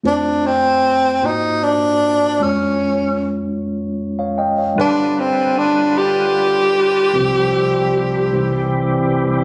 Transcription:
0.03 tine electric piano F2 A3 C4 F4 C5, tenor saxophone D4
0.46 tenor saxophone C4
1.22 tine electric piano G#2 A#3 F4 F#4 C5, tenor saxophone D#4
1.63 tenor saxophone D4
2.39 tine electric piano F2 G#3 C#4 F4, tenor saxophone C#4
2.44 tine electric piano C#5
4.19 tine electric piano C#5 F5
4.38 tine electric piano D#5 G5
4.58 tine electric piano C#5 F5
4.75 tine electric piano G2 G3 D4 F4 B4, tonewheel organ D3 G3 F4 B4
4.81 tenor saxophone D4
5.20 tenor saxophone C4
5.58 tenor saxophone D4
5.98 tenor saxophone G4
7.14 tine electric piano C2 C3 G3 C4 F4 C5, tonewheel organ F3 G3 C4 G4
8.31 tine electric piano C2 C3 G3 C4 D#4 C5, tonewheel organ E3
8.39 tine electric piano E4

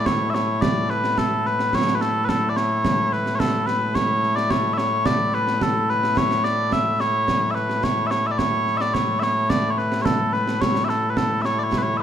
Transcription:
Already playing: bagpipes A2 A3 E4
0.06 bagpipes C#5, concert bass drum, snare
0.30 bagpipes E5
0.34 bagpipes C#5, snare
0.61 bagpipes D5, concert bass drum, snare
0.90 bagpipes B4, snare
1.04 snare
1.18 bagpipes A4, concert bass drum, snare
1.45 bagpipes B4, snare
1.59 snare
1.73 bagpipes C#5, concert bass drum, snare
1.87 snare
1.95 bagpipes B4
2.01 bagpipes A4, snare
2.25 bagpipes B4
2.29 bagpipes A4, concert bass drum, snare
2.49 bagpipes D5
2.57 bagpipes C#5, snare
2.85 concert bass drum, snare
3.12 bagpipes B4, snare
3.26 snare
3.35 bagpipes C#5
3.39 bagpipes A4, concert bass drum, snare
3.66 bagpipes B4, snare
3.95 bagpipes C#5, concert bass drum, snare
4.23 snare
4.36 bagpipes D5, snare
4.51 bagpipes C#5, concert bass drum, snare
4.73 bagpipes E5
4.78 bagpipes C#5, snare
5.06 bagpipes D5, concert bass drum, snare
5.34 bagpipes B4, snare
5.47 snare
5.61 bagpipes A4, concert bass drum, snare
5.89 bagpipes B4, snare
6.03 snare
6.17 bagpipes C#5, concert bass drum, snare
6.31 snare
6.44 bagpipes D5, snare
6.72 bagpipes E5, concert bass drum, snare
7.00 bagpipes C#5, snare
7.28 concert bass drum, snare
7.51 bagpipes B4 E5
7.56 snare
7.70 snare
7.84 bagpipes C#5, concert bass drum, snare
8.07 bagpipes C#5 E5
8.11 snare
8.27 bagpipes E5
8.31 bagpipes D5
8.38 bagpipes C#5, concert bass drum, snare
8.67 snare
8.77 bagpipes D5 E5, snare
8.94 bagpipes C#5, concert bass drum, snare
9.20 bagpipes C#5 E5, snare
9.50 bagpipes D5, concert bass drum, snare
9.71 bagpipes C#5
9.78 bagpipes B4, snare
9.92 snare
10.02 bagpipes A4 C#5, concert bass drum, snare
10.33 bagpipes B4, snare
10.47 snare
10.61 bagpipes C#5, concert bass drum, snare
10.75 snare
10.85 bagpipes E5
10.89 bagpipes A4, snare
11.10 bagpipes B4
11.17 bagpipes A4, concert bass drum, snare
11.42 bagpipes C#5 E5, snare
11.59 bagpipes D5
11.64 bagpipes C#5
11.72 concert bass drum, snare
11.78 bagpipes B4
11.82 bagpipes C#5
11.97 bagpipes E5

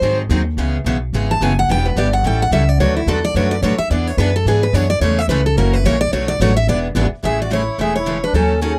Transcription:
Already playing: steel-string acoustic guitar C5
0.01 upright bass G#2, steel-string acoustic guitar D#3 F#3 C4 D#4 G#4
0.29 upright bass D#2, steel-string acoustic guitar D#3 F#3 C4 D#4 G#4
0.57 upright bass C#2, steel-string acoustic guitar C#3 E3 G#3 B3 C#4 E4 G#4
0.84 upright bass B1, steel-string acoustic guitar C#3 E3 G#3 B3 C#4 E4 G#4
1.13 upright bass G#1, steel-string acoustic guitar C#3 E3 G#3 B3 C#4 E4 G#4
1.31 steel-string acoustic guitar A5
1.41 upright bass F#1, steel-string acoustic guitar C#3 E3 G#3 B3 C#4 E4 G#4 G#5
1.59 steel-string acoustic guitar F#5
1.69 upright bass E1, steel-string acoustic guitar E3 G3 B3 D4 E4 G4 B4 G5
1.86 steel-string acoustic guitar B4
1.96 upright bass G1, steel-string acoustic guitar E3 G3 B3 D4 E4 G4 B4 D5
2.13 steel-string acoustic guitar F#5
2.24 upright bass A1, steel-string acoustic guitar E3 G3 C#4 E4 A4 G5
2.42 steel-string acoustic guitar F#5
2.51 upright bass C#2, steel-string acoustic guitar E3 G3 C#4 E4 A4 E5
2.69 steel-string acoustic guitar D5
2.78 upright bass D2, steel-string acoustic guitar D3 F#3 A3 D4 F#4 B4 C#5
2.96 steel-string acoustic guitar E4
3.06 upright bass E2, steel-string acoustic guitar D3 F#3 A3 D4 F#4 A4 B4
3.24 steel-string acoustic guitar D5
3.35 upright bass F#2, steel-string acoustic guitar D3 F#3 A3 D4 F#4 B4 C#5
3.51 steel-string acoustic guitar D5
3.62 upright bass A2, steel-string acoustic guitar D3 F#3 A3 D4 F#4 B4 C#5
3.78 steel-string acoustic guitar E5, muted upright bass stroke
3.90 upright bass E2, steel-string acoustic guitar E3 B3 D4 G#4 B4 D5
4.07 steel-string acoustic guitar C#5
4.17 upright bass F#2, steel-string acoustic guitar E3 B3 D4 G#4 B4
4.36 steel-string acoustic guitar A4
4.45 upright bass G#2, steel-string acoustic guitar E3 B3 D4 G#4 B4
4.63 steel-string acoustic guitar B4
4.73 upright bass F#2, steel-string acoustic guitar E3 B3 D4 G#4 B4 C#5
4.90 steel-string acoustic guitar D5
5.01 upright bass E2, steel-string acoustic guitar C#3 E3 G#3 A3 C#4 E4 G#4 A4 C#5
5.19 steel-string acoustic guitar E5
5.28 upright bass C#2, steel-string acoustic guitar C#3 E3 G#3 A3 C#4 E4 G#4 A4 B4
5.46 steel-string acoustic guitar A4
5.56 upright bass F#1, steel-string acoustic guitar C#3 E3 F#3 A#3 C#4 E4 F#4 A#4
5.73 steel-string acoustic guitar B4
5.84 upright bass A#1, steel-string acoustic guitar C#3 E3 F#3 A#3 C#4 E4 F#4 A#4 C#5
6.01 steel-string acoustic guitar D5
6.12 upright bass B1, steel-string acoustic guitar B2 F#3 A3 D4 F#4 B4 C#5
6.28 steel-string acoustic guitar D5
6.40 upright bass A1, steel-string acoustic guitar B2 F#3 A3 D4 F#4 B4 C#5
6.57 steel-string acoustic guitar E5
6.67 upright bass E1, steel-string acoustic guitar E3 B3 D4 G#4 B4 D5
6.95 upright bass G#1, steel-string acoustic guitar E3 B3 D4 G#4 B4
7.23 upright bass A1, steel-string acoustic guitar C#3 E3 G#3 A3 C#4 E4 G#4 A4 E5, accordion G#4
7.42 accordion F#4, steel-string acoustic guitar D5
7.50 steel-string acoustic guitar C#3 E3 G#3 A3 C#4 E4 G#4 A4 C#5, accordion E4
7.78 upright bass E1, steel-string acoustic guitar C#3 E3 G#3 A3 C#4 E4 G#4 A4 E5, accordion G#4
7.96 accordion E4, steel-string acoustic guitar C#5
8.06 steel-string acoustic guitar C#3 E3 G#3 A3 C#4 E4 G#4 A4
8.24 accordion D4, steel-string acoustic guitar B4
8.33 upright bass D#2, steel-string acoustic guitar D#3 F#3 C#4 D#4 A4, accordion C#4
8.61 steel-string acoustic guitar D#3 F#3 C#4 D#4 G#4 A4, accordion C#4

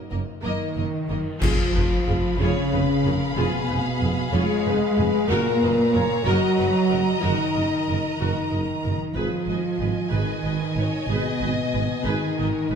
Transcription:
Already playing: trombone section F#2 F#3, french horn section A#3 D#4
0.11 double bass section F#1, cello section F#2, viola section A#3, violin section A#4 D#5
0.43 double bass section F#1, cello section F#2 D#3, trombone section D#3, viola section A#3, french horn section D#4, violin section A#4 D#5
0.76 double bass section F#1, cello section F#2, viola section A#3, violin section A#4 D#5
1.09 double bass section F#1, cello section F#2, viola section A#3, violin section A#4 D#5
1.40 tuba F1, double bass section F2, trombone section F3, cello section F3, french horn section F4, viola section F4 G#4, violin section F5 B5, concert bass drum, crash, impact
1.75 tuba F1, double bass section F2, viola section G#4 B4
2.07 tuba F1, double bass section F2, viola section G#4
2.36 tuba F1, double bass section F2, trombone section C#3, cello section C#3, french horn section C#4, violin section C#5
2.41 viola section F4 G#4
2.71 tuba F1, double bass section F2, viola section G#4 B4, violin section B4
3.04 tuba F1, double bass section F2, viola section G#4, violin section A#4
3.35 tuba F1, double bass section F2, cello section B2, trombone section B2, french horn section B3, viola section F4 G#4, violin section G#4
3.69 tuba F1, double bass section F2, viola section G#4 B4
4.00 tuba F1, double bass section F2, viola section G#4
4.31 tuba F1, double bass section F2, trombone section G#3, cello section G#3, french horn section G#4, violin section C#5
4.36 viola section F4 G#4
4.65 tuba F1, double bass section F2, viola section G#4 B4, violin section B4
4.97 tuba F1, double bass section F2, viola section G#4, violin section B4
5.27 tuba F#1, double bass section F#2, trombone section A#2, cello section A#3, viola section F#4, french horn section A#4, violin section A#4 A#5
5.31 viola section A#4
5.61 tuba F#1, double bass section F#2, viola section F#4 D#5, violin section B4
5.93 tuba F#1, double bass section F#2, viola section A#4, violin section C#5
6.25 tuba F#1, double bass section F#2, trombone section F#3, cello section F#3, french horn section F#4, viola section F#4 A#4, violin section D#5
6.58 tuba F#1, double bass section F#2, viola section F#4 D#5, violin section B4
6.90 tuba F#1, double bass section F#2, violin section A#4, viola section A#4
7.21 tuba F#1, double bass section F#2, cello section D#3, trombone section D#3, french horn section D#4, viola section F#4 A#4, violin section A#4
7.55 tuba F#1, double bass section F#2, viola section A#4 D#5
7.87 tuba F#1, double bass section F#2, viola section A#4
8.18 tuba F#1, double bass section F#2, trombone section D#3, cello section D#3, french horn section D#4, viola section F#4 A#4
8.51 tuba F#1, double bass section F#2, viola section A#4 D#5
8.84 tuba F#1, double bass section F#2, viola section A#4
9.13 double bass section G#1, tuba G#1, trombone section F3, cello section F3, french horn section F4, viola section G#4 B4
9.18 violin section D#5 G#5
9.48 double bass section G#1, tuba G#1, viola section B4 D#5
9.80 double bass section G#1, tuba G#1, viola section B4
10.10 double bass section G#1, tuba G#1, trombone section D#3, cello section D#3, french horn section D#4, viola section G#4 B4, violin section B4
10.43 double bass section G#1, tuba G#1, violin section B4, viola section B4 D#5
10.75 double bass section G#1, tuba G#1, viola section B4, violin section C#5
11.08 double bass section G#1, tuba G#1, trombone section B2, cello section B2, french horn section B3, viola section G#4 B4, violin section D#5
11.41 double bass section G#1, tuba G#1, viola section B4 D#5
11.74 double bass section G#1, tuba G#1, viola section B4
12.04 double bass section G#1, tuba G#1, trombone section D#3, cello section D#3, french horn section D#4, violin section G#4, viola section G#4 B4
12.37 tuba G#1, double bass section G#1, viola section B3 D#5, violin section A#4
12.70 tuba G#1, double bass section G#1, violin section B4, viola section B4

